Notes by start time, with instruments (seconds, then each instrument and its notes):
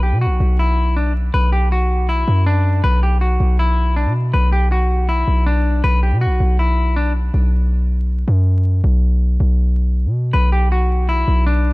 Already playing: 808-style bass B1
0.03 clean electric guitar G4
0.12 808-style bass B2
0.21 clean electric guitar F#4
0.26 808-style bass B1
0.40 808-style bass B1
0.59 clean electric guitar E4
0.97 clean electric guitar D4
1.34 808-style bass B1, clean electric guitar B4
1.52 clean electric guitar G4
1.72 clean electric guitar F#4
2.09 clean electric guitar E4
2.28 808-style bass F#2
2.46 clean electric guitar D4
2.84 808-style bass B1, clean electric guitar B4
3.03 clean electric guitar G4
3.21 clean electric guitar F#4
3.40 808-style bass B1
3.59 clean electric guitar E4
3.96 clean electric guitar D4
4.06 808-style bass B2
4.33 808-style bass B1, clean electric guitar B4
4.52 clean electric guitar G4
4.72 clean electric guitar F#4
5.09 clean electric guitar E4
5.28 808-style bass B1
5.46 clean electric guitar D4
5.84 808-style bass B1, clean electric guitar B4
6.03 clean electric guitar G4
6.12 808-style bass B2
6.21 clean electric guitar F#4
6.26 808-style bass B1
6.40 808-style bass B1
6.59 clean electric guitar E4
6.96 clean electric guitar D4
7.34 808-style bass B1
8.28 808-style bass F#2
8.84 808-style bass B1
9.40 808-style bass B1
10.06 808-style bass B2
10.33 808-style bass B1, clean electric guitar B4
10.52 clean electric guitar G4
10.72 clean electric guitar F#4
11.09 clean electric guitar E4
11.28 808-style bass B1
11.46 clean electric guitar D4